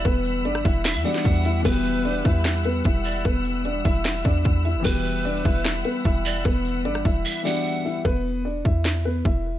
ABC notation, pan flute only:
X:1
M:4/4
L:1/8
Q:1/4=150
K:Em
V:1 name="Pan flute"
z4 e f3 | B4 z3 d | z8 | B4 z3 d |
z4 e f3 | z8 |]